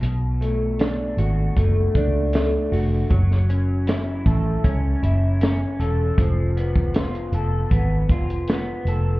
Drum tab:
HH |x-x-x-x-x-x-x-o-|x-x-x-x-x-x-x-x-|x-x-xxx-x-xxx-x-|
SD |----o-------o---|-o--o-------o---|----o-------o---|
BD |--------o-o-----|o-----o-o-------|o--o----o-o-----|